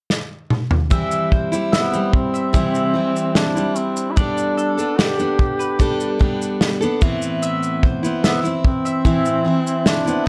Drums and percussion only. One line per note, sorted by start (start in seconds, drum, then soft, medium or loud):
0.10 snare medium
0.50 mid tom medium
0.71 floor tom medium
0.91 kick medium
0.91 shaker medium
1.11 shaker soft
1.32 kick medium
1.53 shaker soft
1.73 snare loud
1.73 shaker medium
1.94 shaker soft
2.13 kick medium
2.35 shaker soft
2.54 kick medium
2.54 shaker medium
2.75 shaker medium
3.16 shaker soft
3.35 snare medium
3.35 shaker soft
3.57 shaker soft
3.76 shaker soft
3.96 shaker soft
4.17 kick medium
4.17 shaker medium
4.37 shaker soft
4.58 shaker soft
4.79 shaker soft
4.99 snare loud
4.99 shaker medium
5.19 shaker soft
5.39 kick medium
5.60 shaker soft
5.80 kick medium
5.80 shaker medium
6.00 shaker soft
6.21 kick medium
6.42 shaker soft
6.61 snare loud
6.61 shaker medium
6.82 shaker soft
7.01 kick medium
7.01 shaker soft
7.22 shaker soft
7.43 shaker medium
7.63 shaker soft
7.83 kick medium
8.04 shaker soft
8.24 snare loud
8.24 shaker medium
8.45 shaker soft
8.65 kick medium
8.86 shaker soft
9.05 kick medium
9.05 shaker medium
9.25 shaker medium
9.67 shaker soft
9.86 snare loud
9.86 shaker medium
10.07 shaker soft